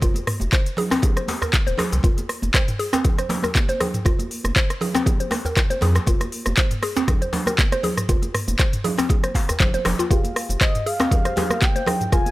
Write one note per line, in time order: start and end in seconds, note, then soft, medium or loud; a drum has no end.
0.02 0.11 F1 loud
0.02 0.15 F4 medium
0.02 kick loud
0.02 closed hi-hat medium
0.02 muted conga medium
0.02 djembe bass loud
0.02 cabasa medium
0.14 closed hi-hat soft
0.14 high conga medium
0.14 cabasa soft
0.27 cross-stick loud
0.27 mid tom medium
0.27 open hi-hat medium
0.40 0.48 F1 medium
0.40 closed hi-hat soft
0.40 muted conga soft
0.40 high conga medium
0.40 cabasa medium
0.53 0.65 C5 medium
0.53 kick loud
0.53 cross-stick medium
0.53 clap loud
0.53 closed hi-hat medium
0.53 cabasa medium
0.66 closed hi-hat soft
0.66 cabasa soft
0.77 0.85 G#4 loud
0.77 open hi-hat medium
0.77 low conga loud
0.90 1.02 C4 loud
0.90 cross-stick medium
0.90 open hi-hat soft
0.90 muted conga soft
0.90 djembe slap loud
0.90 cabasa medium
1.02 1.15 G#4 medium
1.02 kick loud
1.02 closed hi-hat medium
1.02 high conga loud
1.02 djembe tone medium
1.02 low conga medium
1.02 cabasa medium
1.17 1.27 C5 medium
1.17 cross-stick medium
1.17 closed hi-hat soft
1.17 cabasa soft
1.28 open hi-hat medium
1.28 muted conga soft
1.28 djembe slap loud
1.28 high conga loud
1.42 1.52 A#4 medium
1.42 cross-stick medium
1.42 djembe bass medium
1.42 cabasa medium
1.53 kick loud
1.53 clap loud
1.53 closed hi-hat medium
1.53 djembe tone medium
1.53 cabasa medium
1.67 1.75 D#1 medium
1.67 1.78 C5 loud
1.67 closed hi-hat soft
1.67 muted conga soft
1.67 cabasa soft
1.78 1.86 G#4 loud
1.78 cross-stick medium
1.78 open hi-hat medium
1.78 djembe slap loud
1.78 high conga medium
1.78 low conga medium
1.92 2.00 C2 medium
1.92 closed hi-hat soft
1.92 djembe slap medium
1.92 cabasa medium
2.03 2.12 F1 loud
2.03 2.16 F4 medium
2.03 kick loud
2.03 closed hi-hat medium
2.03 muted conga soft
2.03 djembe bass medium
2.03 cabasa medium
2.18 closed hi-hat soft
2.18 high conga medium
2.18 cabasa soft
2.29 cross-stick medium
2.29 open hi-hat medium
2.42 2.50 F1 loud
2.42 closed hi-hat soft
2.42 muted conga soft
2.42 high conga medium
2.42 cabasa medium
2.54 2.67 C5 medium
2.54 kick loud
2.54 cross-stick medium
2.54 clap loud
2.54 closed hi-hat medium
2.54 djembe tone medium
2.54 cabasa medium
2.68 closed hi-hat soft
2.68 mid tom medium
2.68 cabasa soft
2.79 2.87 G#4 loud
2.79 open hi-hat medium
2.93 3.04 C4 loud
2.93 cross-stick medium
2.93 muted conga soft
2.93 djembe slap loud
2.93 cabasa medium
3.04 3.17 G#4 medium
3.04 kick loud
3.04 closed hi-hat medium
3.04 low conga medium
3.04 djembe bass medium
3.04 cabasa medium
3.18 3.29 C5 medium
3.18 cross-stick medium
3.18 closed hi-hat soft
3.18 cabasa soft
3.29 open hi-hat medium
3.29 muted conga soft
3.29 djembe slap loud
3.29 djembe tone loud
3.29 high conga medium
3.29 low conga medium
3.42 3.54 A#4 medium
3.42 cross-stick medium
3.42 high conga medium
3.42 djembe tone medium
3.42 cabasa medium
3.55 kick loud
3.55 clap loud
3.55 closed hi-hat medium
3.55 high conga loud
3.55 cabasa medium
3.69 3.80 C5 loud
3.69 closed hi-hat soft
3.69 muted conga medium
3.69 cabasa soft
3.80 3.88 G#4 loud
3.80 cross-stick medium
3.80 open hi-hat medium
3.80 djembe tone medium
3.80 low conga medium
3.94 closed hi-hat soft
3.94 mid tom medium
3.94 cabasa medium
4.05 4.14 F1 loud
4.05 4.18 F4 medium
4.05 kick loud
4.05 cross-stick medium
4.05 closed hi-hat medium
4.05 muted conga medium
4.05 djembe bass medium
4.05 cabasa medium
4.19 closed hi-hat soft
4.19 high conga medium
4.19 cabasa soft
4.31 open hi-hat medium
4.44 4.52 F1 loud
4.44 cross-stick medium
4.44 closed hi-hat soft
4.44 muted conga soft
4.44 high conga medium
4.44 cabasa medium
4.56 4.68 C5 medium
4.56 kick loud
4.56 clap loud
4.56 closed hi-hat medium
4.56 cabasa medium
4.70 cross-stick medium
4.70 closed hi-hat soft
4.70 cabasa soft
4.81 4.89 G#4 loud
4.81 open hi-hat medium
4.81 low conga loud
4.94 5.05 C4 loud
4.94 cross-stick medium
4.94 muted conga soft
4.94 djembe slap loud
4.94 cabasa medium
5.06 5.19 G#4 medium
5.06 kick loud
5.06 closed hi-hat medium
5.06 high conga loud
5.06 djembe tone medium
5.06 low conga medium
5.06 cabasa medium
5.20 5.31 C5 medium
5.20 closed hi-hat soft
5.20 cabasa soft
5.31 cross-stick medium
5.31 open hi-hat medium
5.31 djembe slap loud
5.31 muted conga soft
5.31 high conga medium
5.45 5.56 A#4 medium
5.45 djembe bass medium
5.45 cabasa medium
5.57 kick loud
5.57 cross-stick medium
5.57 clap loud
5.57 closed hi-hat medium
5.57 djembe tone medium
5.57 cabasa medium
5.70 5.81 C5 loud
5.70 closed hi-hat soft
5.70 muted conga medium
5.70 cabasa soft
5.81 5.99 F2 medium
5.81 5.90 G#4 loud
5.81 open hi-hat medium
5.81 djembe slap loud
5.81 high conga medium
5.81 low conga medium
5.95 cross-stick medium
5.95 closed hi-hat soft
5.95 djembe slap medium
5.95 cabasa medium
6.06 6.16 F1 loud
6.06 6.20 F4 medium
6.06 kick loud
6.06 closed hi-hat medium
6.06 muted conga medium
6.06 djembe bass loud
6.06 cabasa medium
6.20 cross-stick medium
6.20 closed hi-hat soft
6.20 high conga medium
6.20 cabasa soft
6.32 open hi-hat loud
6.46 6.54 F1 loud
6.46 cross-stick medium
6.46 closed hi-hat soft
6.46 muted conga soft
6.46 high conga medium
6.46 cabasa medium
6.56 6.70 C5 medium
6.56 kick loud
6.56 clap loud
6.56 closed hi-hat medium
6.56 djembe tone medium
6.56 cabasa medium
6.71 closed hi-hat soft
6.71 mid tom medium
6.71 cabasa soft
6.83 6.90 G#4 loud
6.83 cross-stick medium
6.83 open hi-hat loud
6.96 7.07 C4 loud
6.96 djembe slap loud
6.96 muted conga medium
6.96 cabasa medium
7.08 7.20 G#4 medium
7.08 kick loud
7.08 cross-stick medium
7.08 closed hi-hat medium
7.08 djembe bass medium
7.08 low conga medium
7.08 cabasa medium
7.22 7.32 C5 medium
7.22 closed hi-hat soft
7.22 cabasa soft
7.33 open hi-hat medium
7.33 djembe slap loud
7.33 muted conga soft
7.33 djembe tone medium
7.33 high conga medium
7.33 low conga medium
7.46 7.57 A#4 medium
7.46 cross-stick medium
7.46 high conga medium
7.46 djembe tone medium
7.46 cabasa medium
7.59 kick loud
7.59 clap loud
7.59 closed hi-hat medium
7.59 high conga medium
7.59 cabasa medium
7.72 7.83 C5 loud
7.72 cross-stick medium
7.72 closed hi-hat soft
7.72 muted conga soft
7.72 cabasa soft
7.83 7.91 G#4 loud
7.83 open hi-hat medium
7.83 djembe tone medium
7.83 low conga loud
7.97 cross-stick medium
7.97 closed hi-hat soft
7.97 mid tom medium
7.97 cabasa medium
8.09 8.18 F1 loud
8.09 8.21 F4 medium
8.09 kick loud
8.09 closed hi-hat medium
8.09 muted conga medium
8.09 djembe bass loud
8.09 cabasa medium
8.22 closed hi-hat soft
8.22 high conga medium
8.22 cabasa soft
8.35 cross-stick loud
8.35 mid tom medium
8.35 open hi-hat loud
8.48 8.55 F1 loud
8.48 closed hi-hat soft
8.48 muted conga soft
8.48 high conga medium
8.48 cabasa medium
8.59 8.72 C5 medium
8.59 kick loud
8.59 cross-stick medium
8.59 clap loud
8.59 closed hi-hat medium
8.59 djembe tone medium
8.59 cabasa medium
8.73 closed hi-hat soft
8.73 mid tom medium
8.73 cabasa soft
8.84 8.92 G#4 loud
8.84 open hi-hat loud
8.84 low conga loud
8.98 9.09 C4 loud
8.98 cross-stick medium
8.98 open hi-hat medium
8.98 muted conga medium
8.98 djembe slap loud
8.98 cabasa medium
9.09 9.22 G#4 medium
9.09 kick loud
9.09 closed hi-hat medium
9.09 djembe tone medium
9.09 high conga loud
9.09 low conga medium
9.09 cabasa medium
9.24 9.34 C5 medium
9.24 cross-stick medium
9.24 closed hi-hat soft
9.24 cabasa soft
9.34 9.42 F5 medium
9.34 kick medium
9.34 open hi-hat loud
9.34 muted conga soft
9.34 djembe slap loud
9.34 high conga medium
9.49 cross-stick medium
9.49 closed hi-hat soft
9.49 djembe bass loud
9.49 cabasa medium
9.60 9.77 F1 loud
9.60 9.73 C5 medium
9.60 kick loud
9.60 clap loud
9.60 closed hi-hat medium
9.60 djembe tone medium
9.60 low conga medium
9.60 cabasa medium
9.74 9.84 C5 loud
9.74 closed hi-hat soft
9.74 muted conga medium
9.74 cabasa soft
9.85 9.94 F1 medium
9.85 cross-stick loud
9.85 open hi-hat loud
9.85 djembe slap loud
9.85 high conga medium
9.85 low conga loud
9.99 10.05 F4 loud
9.99 closed hi-hat soft
9.99 djembe slap medium
9.99 cabasa medium
10.10 10.19 F1 loud
10.10 10.23 F4 medium
10.10 11.09 G4 medium
10.10 11.09 G#4 medium
10.10 11.09 F5 medium
10.10 kick loud
10.10 closed hi-hat medium
10.10 muted conga medium
10.10 djembe bass medium
10.10 cabasa medium
10.24 closed hi-hat soft
10.24 high conga medium
10.24 cabasa soft
10.36 cross-stick loud
10.36 open hi-hat loud
10.49 10.57 F1 loud
10.49 closed hi-hat soft
10.49 muted conga soft
10.49 high conga medium
10.49 cabasa medium
10.61 10.73 C5 medium
10.61 10.88 D#5 medium
10.61 kick loud
10.61 cross-stick medium
10.61 clap loud
10.61 closed hi-hat medium
10.61 djembe tone medium
10.61 cabasa medium
10.75 closed hi-hat soft
10.75 mid tom medium
10.75 cabasa soft
10.86 10.94 G#4 loud
10.86 11.64 F5 loud
10.86 open hi-hat medium
11.00 11.10 C4 loud
11.00 cross-stick loud
11.00 djembe slap loud
11.00 muted conga medium
11.00 cabasa medium
11.11 11.34 G4 medium
11.11 11.34 G#4 medium
11.11 11.24 G#4 medium
11.11 11.34 F5 medium
11.11 kick loud
11.11 closed hi-hat medium
11.11 low conga medium
11.11 djembe bass loud
11.11 cabasa medium
11.25 11.36 C5 medium
11.25 cross-stick medium
11.25 closed hi-hat soft
11.25 cabasa soft
11.36 12.10 G4 medium
11.36 12.10 G#4 medium
11.36 12.10 F5 medium
11.36 open hi-hat loud
11.36 muted conga soft
11.36 djembe slap loud
11.36 high conga medium
11.36 djembe tone medium
11.36 low conga loud
11.50 11.61 A#4 medium
11.50 cross-stick loud
11.50 djembe tone medium
11.50 high conga medium
11.50 cabasa medium
11.61 12.12 G5 loud
11.61 kick loud
11.61 clap loud
11.61 closed hi-hat medium
11.61 high conga medium
11.61 cabasa medium
11.76 11.87 C5 loud
11.76 closed hi-hat soft
11.76 muted conga medium
11.76 cabasa soft
11.86 11.95 G#4 loud
11.86 cross-stick loud
11.86 open hi-hat loud
11.86 djembe tone medium
11.86 low conga loud
12.01 closed hi-hat soft
12.01 mid tom medium
12.01 cabasa medium
12.12 12.21 F1 loud
12.12 12.31 F4 loud
12.12 12.25 F4 medium
12.12 12.31 G#4 medium
12.12 12.31 F5 loud
12.12 12.31 G#5 loud
12.12 kick loud
12.12 cross-stick medium
12.12 closed hi-hat medium
12.12 muted conga medium
12.12 djembe bass loud
12.12 cabasa medium
12.26 closed hi-hat soft
12.26 high conga medium
12.26 cabasa soft